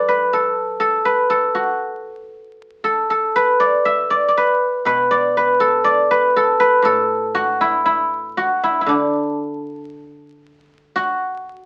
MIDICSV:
0, 0, Header, 1, 2, 480
1, 0, Start_track
1, 0, Tempo, 985222
1, 375, Tempo, 1029160
1, 376, Time_signature, 2, 2, 24, 8
1, 1815, Tempo, 995025
1, 3735, Tempo, 1038062
1, 5501, End_track
2, 0, Start_track
2, 0, Title_t, "Guzheng"
2, 0, Program_c, 0, 107
2, 0, Note_on_c, 0, 54, 62
2, 0, Note_on_c, 0, 66, 79
2, 0, Note_on_c, 0, 69, 92
2, 0, Note_on_c, 0, 74, 93
2, 41, Note_on_c, 0, 71, 80
2, 160, Note_off_c, 0, 69, 0
2, 162, Note_on_c, 0, 69, 77
2, 387, Note_off_c, 0, 69, 0
2, 389, Note_on_c, 0, 69, 84
2, 505, Note_off_c, 0, 71, 0
2, 507, Note_on_c, 0, 71, 76
2, 620, Note_off_c, 0, 69, 0
2, 622, Note_on_c, 0, 69, 84
2, 727, Note_off_c, 0, 66, 0
2, 738, Note_on_c, 0, 66, 65
2, 798, Note_off_c, 0, 74, 0
2, 852, Note_off_c, 0, 54, 0
2, 1339, Note_off_c, 0, 69, 0
2, 1341, Note_on_c, 0, 69, 83
2, 1461, Note_off_c, 0, 69, 0
2, 1461, Note_off_c, 0, 71, 0
2, 1463, Note_on_c, 0, 69, 75
2, 1582, Note_on_c, 0, 71, 91
2, 1694, Note_on_c, 0, 74, 85
2, 1813, Note_on_c, 0, 76, 93
2, 1873, Note_off_c, 0, 66, 0
2, 1932, Note_off_c, 0, 74, 0
2, 1934, Note_on_c, 0, 74, 94
2, 2019, Note_off_c, 0, 74, 0
2, 2021, Note_on_c, 0, 74, 69
2, 2062, Note_off_c, 0, 71, 0
2, 2064, Note_on_c, 0, 71, 81
2, 2295, Note_on_c, 0, 47, 60
2, 2298, Note_off_c, 0, 71, 0
2, 2300, Note_on_c, 0, 71, 92
2, 2417, Note_off_c, 0, 74, 0
2, 2419, Note_on_c, 0, 74, 86
2, 2509, Note_off_c, 0, 69, 0
2, 2543, Note_off_c, 0, 71, 0
2, 2545, Note_on_c, 0, 71, 89
2, 2643, Note_off_c, 0, 76, 0
2, 2656, Note_on_c, 0, 69, 84
2, 2771, Note_off_c, 0, 74, 0
2, 2773, Note_on_c, 0, 74, 94
2, 2899, Note_off_c, 0, 71, 0
2, 2901, Note_on_c, 0, 71, 88
2, 3023, Note_off_c, 0, 69, 0
2, 3025, Note_on_c, 0, 69, 83
2, 3135, Note_off_c, 0, 71, 0
2, 3137, Note_on_c, 0, 71, 96
2, 3243, Note_off_c, 0, 47, 0
2, 3246, Note_on_c, 0, 45, 63
2, 3256, Note_off_c, 0, 69, 0
2, 3258, Note_on_c, 0, 69, 91
2, 3498, Note_on_c, 0, 66, 97
2, 3624, Note_on_c, 0, 64, 85
2, 3664, Note_off_c, 0, 74, 0
2, 3742, Note_off_c, 0, 64, 0
2, 3743, Note_on_c, 0, 64, 86
2, 3981, Note_off_c, 0, 66, 0
2, 3983, Note_on_c, 0, 66, 80
2, 4102, Note_off_c, 0, 64, 0
2, 4104, Note_on_c, 0, 64, 77
2, 4108, Note_off_c, 0, 71, 0
2, 4184, Note_off_c, 0, 64, 0
2, 4186, Note_on_c, 0, 64, 55
2, 4210, Note_off_c, 0, 45, 0
2, 4210, Note_on_c, 0, 50, 60
2, 4221, Note_on_c, 0, 62, 73
2, 4293, Note_off_c, 0, 69, 0
2, 5106, Note_off_c, 0, 66, 0
2, 5177, Note_on_c, 0, 66, 90
2, 5392, Note_off_c, 0, 64, 0
2, 5501, Note_off_c, 0, 50, 0
2, 5501, Note_off_c, 0, 62, 0
2, 5501, Note_off_c, 0, 66, 0
2, 5501, End_track
0, 0, End_of_file